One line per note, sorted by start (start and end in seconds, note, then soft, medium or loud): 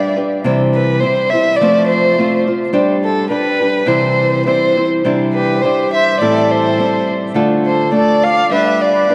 0.00 0.16 G3 soft
0.00 0.16 D4 soft
0.00 0.16 G4 soft
0.00 0.15 B4 soft
0.00 0.15 D5 medium
0.16 0.45 D4 soft
0.16 0.45 G4 soft
0.16 0.44 B4 soft
0.44 1.02 C3 medium
0.44 1.02 E3 medium
0.44 1.01 G3 medium
0.44 1.02 C4 medium
0.44 1.02 E4 medium
0.44 1.03 C5 medium
0.75 1.02 B4 medium
1.00 1.32 G3 soft
1.00 1.32 C4 soft
1.00 1.32 E4 medium
1.00 1.31 C5 medium
1.00 1.32 C5 medium
1.30 1.60 E4 soft
1.30 1.60 C5 soft
1.30 1.58 E5 medium
1.34 1.61 G3 soft
1.34 1.61 C4 soft
1.56 1.87 D5 medium
1.61 2.18 F3 medium
1.61 2.17 A3 medium
1.61 2.18 C4 medium
1.61 2.18 F4 medium
1.61 2.18 C5 medium
1.87 2.42 C5 medium
2.18 2.47 A3 soft
2.18 2.47 C4 soft
2.18 2.46 F4 medium
2.18 2.46 C5 soft
2.47 2.73 C4 soft
2.47 2.74 F4 soft
2.47 2.72 C5 soft
2.73 3.30 G3 medium
2.73 3.29 D4 medium
2.73 3.31 G4 medium
2.73 3.31 C5 medium
3.04 3.30 A4 medium
3.30 3.61 G3 soft
3.30 3.61 D4 medium
3.30 3.60 G4 medium
3.30 3.89 B4 medium
3.30 3.59 B4 medium
3.60 3.86 D4 soft
3.60 3.86 G4 soft
3.60 3.87 B4 soft
3.86 4.45 C3 medium
3.86 5.05 E3 medium
3.86 4.46 G3 medium
3.86 4.47 C4 medium
3.86 4.46 E4 medium
3.86 4.47 C5 medium
3.86 4.45 C5 medium
4.46 4.77 G3 soft
4.46 4.76 C4 soft
4.46 4.76 E4 soft
4.46 4.88 C5 medium
4.46 4.76 C5 soft
4.77 5.03 G3 soft
4.77 5.05 C4 soft
4.77 5.05 E4 soft
4.77 5.05 C5 soft
5.04 5.63 C3 medium
5.04 5.63 E3 medium
5.04 5.62 G3 medium
5.04 5.63 D4 medium
5.04 5.64 E4 medium
5.04 5.64 C5 medium
5.34 5.63 G4 medium
5.34 5.63 B4 medium
5.62 6.20 G3 soft
5.62 6.21 D4 soft
5.62 6.20 E4 medium
5.62 5.94 G4 medium
5.62 5.93 C5 medium
5.62 6.21 C5 medium
5.94 6.20 C5 medium
5.94 6.19 E5 medium
6.20 6.79 A2 medium
6.20 6.79 E3 medium
6.20 6.78 G3 medium
6.20 6.78 C4 medium
6.20 6.79 E4 medium
6.20 6.79 A4 medium
6.20 6.53 A4 medium
6.20 6.52 D5 medium
6.51 7.09 A4 medium
6.51 7.09 C5 medium
6.79 7.35 G3 soft
6.79 7.35 C4 soft
6.79 7.35 E4 medium
6.79 7.35 A4 medium
7.34 7.93 D3 medium
7.34 7.91 A3 medium
7.34 7.91 D4 medium
7.34 7.92 F4 medium
7.34 7.92 A4 medium
7.66 7.93 A4 medium
7.66 7.92 C5 medium
7.92 8.51 A3 soft
7.92 8.50 D4 soft
7.92 8.51 F4 soft
7.92 8.51 A4 soft
7.92 8.27 A4 medium
7.92 8.25 D5 medium
8.24 8.53 D5 medium
8.24 8.51 F5 medium
8.51 9.08 G3 medium
8.51 9.09 D4 medium
8.51 9.09 G4 medium
8.51 9.09 B4 medium
8.51 8.83 B4 medium
8.51 8.83 E5 medium
8.82 9.15 B4 medium
8.82 9.15 D5 medium
9.09 9.15 G3 soft
9.09 9.15 D4 soft
9.09 9.15 G4 soft
9.09 9.15 B4 medium